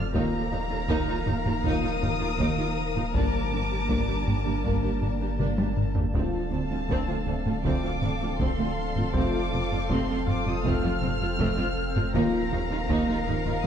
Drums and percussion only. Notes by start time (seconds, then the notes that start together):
0.15 taiko
0.90 taiko
1.27 taiko low-mid
1.46 taiko low-mid
1.65 taiko
2.02 taiko low-mid
2.40 taiko
2.96 taiko low-mid
3.14 taiko
3.89 taiko
4.27 taiko low-mid
4.46 taiko low-mid
4.65 taiko
5.02 taiko low-mid
5.40 taiko mid
5.58 taiko high
5.77 taiko low-mid
5.96 taiko low
6.15 taiko
6.90 taiko
7.27 taiko low-mid
7.46 taiko low-mid
7.65 taiko
8.02 taiko low-mid
8.40 taiko
8.96 taiko low-mid
9.14 taiko
9.90 taiko
10.27 taiko low-mid
10.46 taiko low-mid
10.64 taiko
11.02 taiko low-mid
11.39 taiko
11.96 taiko low-mid
12.14 taiko
12.89 taiko
13.27 taiko low-mid
13.46 taiko low-mid